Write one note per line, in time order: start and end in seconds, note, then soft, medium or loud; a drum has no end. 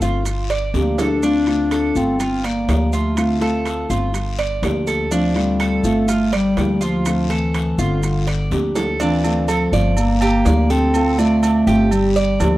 0.00 0.70 G1 medium
0.00 0.22 F3 medium
0.00 0.25 A3 medium
0.00 0.25 C4 medium
0.00 0.25 F4 medium
0.00 0.49 F4 medium
0.00 short guiro medium
0.00 maracas medium
0.25 muted nylon-string guitar stroke medium
0.25 high timbale medium
0.25 long guiro medium
0.25 maracas medium
0.50 0.97 D5 medium
0.50 high timbale medium
0.50 maracas soft
0.74 1.89 D2 medium
0.74 1.22 F3 soft
0.74 1.22 A#3 soft
0.74 1.02 A#3 medium
0.74 1.23 D4 soft
0.74 1.23 G4 medium
0.74 high timbale medium
0.74 short guiro medium
0.74 maracas soft
0.98 1.98 D4 loud
0.98 1.22 A4 medium
0.98 low timbale loud
0.98 short guiro medium
0.98 maracas medium
1.23 1.46 D3 medium
1.23 1.47 A3 medium
1.23 1.47 C4 medium
1.23 1.70 D4 medium
1.23 1.46 F4 medium
1.23 long guiro medium
1.23 maracas medium
1.47 1.96 A3 soft
1.47 1.95 C4 medium
1.47 1.94 F4 medium
1.47 high timbale medium
1.47 maracas soft
1.71 2.19 A4 medium
1.71 high timbale medium
1.71 low timbale medium
1.71 short guiro medium
1.71 maracas soft
1.95 2.65 G1 medium
1.95 2.20 A3 medium
1.95 2.20 C4 medium
1.95 2.46 C4 loud
1.95 2.19 F4 medium
1.95 short guiro medium
1.95 maracas medium
2.20 2.44 F4 medium
2.20 muted nylon-string guitar stroke medium
2.20 high timbale medium
2.20 long guiro medium
2.20 maracas medium
2.44 2.95 A#3 medium
2.44 2.92 D5 medium
2.44 high timbale medium
2.44 maracas soft
2.68 3.83 D2 medium
2.68 3.16 F3 soft
2.68 3.16 A#3 soft
2.68 3.17 D4 medium
2.68 3.17 G4 medium
2.68 high timbale medium
2.68 low timbale medium
2.68 short guiro medium
2.68 maracas soft
2.93 3.91 A3 medium
2.93 3.40 F4 medium
2.93 short guiro medium
2.93 maracas medium
3.17 3.40 D3 medium
3.17 3.41 A3 medium
3.17 3.41 C4 medium
3.17 3.40 F4 medium
3.17 high timbale loud
3.17 long guiro medium
3.17 maracas medium
3.41 3.90 A3 medium
3.41 3.89 C4 medium
3.41 3.88 F4 medium
3.41 3.89 A4 medium
3.41 high timbale medium
3.41 maracas soft
3.65 high timbale medium
3.65 low timbale medium
3.65 short guiro medium
3.65 maracas soft
3.90 4.59 G1 medium
3.90 4.14 A3 soft
3.90 4.14 C4 medium
3.90 4.13 F4 medium
3.90 4.37 F4 medium
3.90 short guiro medium
3.90 maracas medium
4.14 muted nylon-string guitar stroke medium
4.14 high timbale medium
4.14 long guiro medium
4.14 maracas medium
4.38 4.86 D5 medium
4.38 high timbale medium
4.38 maracas soft
4.62 5.78 D2 medium
4.62 5.10 F3 soft
4.62 5.11 A#3 soft
4.62 5.11 D4 soft
4.62 5.11 G4 medium
4.62 high timbale medium
4.62 low timbale medium
4.62 short guiro medium
4.62 maracas soft
4.87 5.11 A4 medium
4.87 short guiro medium
4.87 maracas medium
5.11 5.34 D3 medium
5.11 5.38 F3 loud
5.11 5.35 A3 medium
5.11 5.35 C4 medium
5.11 5.59 D4 medium
5.11 5.34 F4 medium
5.11 long guiro medium
5.11 maracas medium
5.35 5.87 G3 loud
5.35 5.84 A3 medium
5.35 5.84 C4 medium
5.35 5.83 F4 medium
5.35 high timbale medium
5.35 maracas soft
5.60 6.07 A4 medium
5.60 high timbale medium
5.60 low timbale medium
5.60 short guiro medium
5.60 maracas soft
5.84 6.53 G1 medium
5.84 6.08 A3 soft
5.84 6.34 A3 loud
5.84 6.08 C4 medium
5.84 6.08 F4 medium
5.84 short guiro medium
5.84 maracas medium
6.08 6.32 F4 medium
6.08 muted nylon-string guitar stroke medium
6.08 high timbale medium
6.08 long guiro medium
6.08 maracas medium
6.33 6.85 G3 loud
6.33 6.80 D5 medium
6.33 high timbale medium
6.33 maracas soft
6.57 7.72 D2 medium
6.57 7.05 F3 soft
6.57 7.05 A#3 medium
6.57 7.05 D4 medium
6.57 7.06 G4 medium
6.57 high timbale medium
6.57 low timbale medium
6.57 short guiro medium
6.57 maracas soft
6.81 7.33 F3 loud
6.81 7.28 F4 medium
6.81 short guiro medium
6.81 maracas medium
7.06 7.29 D3 medium
7.06 7.29 A3 medium
7.06 7.29 C4 medium
7.06 7.30 F4 medium
7.06 high timbale loud
7.06 long guiro medium
7.06 maracas medium
7.30 7.82 E3 medium
7.30 7.78 A3 soft
7.30 7.78 C4 medium
7.30 7.77 A4 medium
7.30 high timbale medium
7.30 maracas soft
7.54 high timbale medium
7.54 low timbale medium
7.54 short guiro medium
7.54 maracas soft
7.78 8.47 G1 medium
7.78 8.77 D3 medium
7.78 8.03 A3 medium
7.78 8.02 C4 medium
7.78 8.02 F4 medium
7.78 8.26 F4 medium
7.78 short guiro medium
7.78 maracas medium
8.03 muted nylon-string guitar stroke medium
8.03 high timbale medium
8.03 long guiro medium
8.03 maracas medium
8.27 8.74 D5 medium
8.27 high timbale medium
8.27 maracas soft
8.51 9.66 D2 medium
8.51 8.99 F3 soft
8.51 8.99 A#3 soft
8.51 9.00 D4 medium
8.51 9.00 G4 medium
8.51 high timbale medium
8.51 short guiro medium
8.51 maracas soft
8.75 8.99 A4 medium
8.75 low timbale medium
8.75 short guiro medium
8.75 maracas medium
9.00 9.23 D3 medium
9.00 9.50 E3 medium
9.00 9.24 A3 medium
9.00 9.24 C4 medium
9.00 9.47 D4 medium
9.00 9.23 F4 medium
9.00 low agogo medium
9.00 long guiro medium
9.00 maracas medium
9.24 9.73 A3 medium
9.24 9.72 C4 medium
9.24 9.72 F4 medium
9.24 low agogo medium
9.24 maracas medium
9.48 9.99 F3 medium
9.48 9.72 A4 medium
9.48 low timbale medium
9.48 low agogo loud
9.48 short guiro medium
9.48 maracas medium
9.72 10.42 G1 loud
9.72 9.97 A3 medium
9.72 9.97 C4 medium
9.72 9.96 F4 medium
9.72 10.20 D5 medium
9.72 short guiro medium
9.72 maracas soft
9.97 10.72 A#3 loud
9.97 muted nylon-string guitar stroke medium
9.97 low agogo medium
9.97 long guiro medium
9.97 maracas medium
10.21 10.45 G4 medium
10.21 low agogo loud
10.21 maracas medium
10.45 11.61 D2 medium
10.45 10.94 F3 soft
10.45 10.94 A#3 medium
10.45 10.94 D4 medium
10.45 10.94 G4 medium
10.45 10.70 D5 medium
10.45 low timbale medium
10.45 short guiro medium
10.45 maracas medium
10.70 11.21 C4 loud
10.70 11.17 A4 medium
10.70 short guiro medium
10.70 maracas soft
10.94 11.18 D3 medium
10.94 11.18 A3 medium
10.94 11.18 C4 medium
10.94 11.18 F4 medium
10.94 low agogo loud
10.94 long guiro medium
10.94 maracas medium
11.18 11.94 A3 loud
11.18 11.67 A3 medium
11.18 11.67 C4 medium
11.18 11.66 F4 medium
11.18 11.66 D5 medium
11.18 low agogo medium
11.18 maracas medium
11.43 low timbale medium
11.43 low agogo loud
11.43 short guiro medium
11.43 maracas medium
11.67 12.36 G1 loud
11.67 11.92 A3 medium
11.67 11.91 C4 medium
11.67 11.91 F4 medium
11.67 12.14 G4 medium
11.67 short guiro medium
11.67 maracas soft
11.91 12.43 G3 loud
11.91 muted nylon-string guitar stroke medium
11.91 low agogo medium
11.91 long guiro medium
11.91 maracas medium
12.16 12.58 D5 medium
12.16 maracas medium
12.40 12.58 D2 medium
12.40 12.58 F3 medium
12.40 12.58 A#3 medium
12.40 12.58 D4 medium
12.40 12.58 G4 medium
12.40 low timbale medium
12.40 low agogo loud
12.40 short guiro medium
12.40 maracas medium